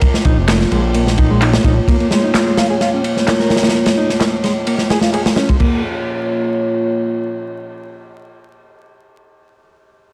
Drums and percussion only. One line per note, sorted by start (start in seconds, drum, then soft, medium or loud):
0.01 kick loud
0.01 ride medium
0.14 snare soft
0.25 kick loud
0.25 ride medium
0.48 snare loud
0.48 clap loud
0.48 ride medium
0.60 snare soft
0.72 ride medium
0.94 ride medium
1.07 snare soft
1.18 kick medium
1.18 ride medium
1.42 clap loud
1.42 ride medium
1.53 snare loud
1.64 kick loud
1.64 ride medium
1.88 kick loud
1.88 ride medium
2.00 ride soft
2.11 snare medium
2.11 ride medium
2.34 snare loud
2.34 clap loud
2.34 ride medium
2.58 snare loud
2.58 ride medium
2.81 snare soft
2.81 ride medium
3.04 ride medium
3.17 snare soft
3.27 snare loud
3.27 clap loud
3.27 ride medium
3.40 snare soft
3.50 snare medium
3.50 ride medium
3.56 snare medium
3.56 ride medium
3.63 snare medium
3.63 ride medium
3.69 snare medium
3.69 ride medium
3.74 snare soft
3.74 ride medium
3.86 snare loud
3.86 ride medium
4.10 snare soft
4.10 ride medium
4.20 snare medium
4.20 clap loud
4.20 ride medium
4.44 snare soft
4.44 ride medium
4.67 ride medium
4.78 snare soft
4.90 snare loud
4.90 ride medium
5.01 snare medium
5.01 ride medium
5.13 clap loud
5.13 ride medium
5.26 snare loud
5.36 snare loud
5.49 kick medium
5.49 ride medium
5.60 kick loud
5.60 crash medium